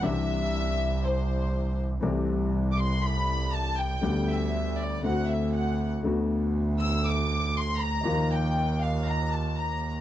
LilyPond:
<<
  \new Staff \with { instrumentName = "Violin section" } { \time 4/4 \key d \mixolydian \tempo 4 = 120 e''2 c''4. r8 | r4 r16. d'''32 c'''8 b''4 a''8 g''8~ | g''8 e''4 d''8 fis''8 e''8 fis''8. r16 | r4. e'''8 d'''4 c'''8 bes''8~ |
bes''8 g''4 f''8 bes''8 a''8 bes''8. r16 | }
  \new Staff \with { instrumentName = "Grand piano" } { \clef bass \time 4/4 \key d \mixolydian <c, c e c' d' g'>1 | <c, c e a c' g'>1 | <d, d g b g'>2 <d, d a c' fis'>2 | <d, d a b fis'>1 |
<ees, ees f bes f'>1 | }
  \new Staff \with { instrumentName = "Double bass" } { \clef bass \time 4/4 \key d \mixolydian c,1 | c,1 | d,2 d,2 | d,1 |
ees,1 | }
>>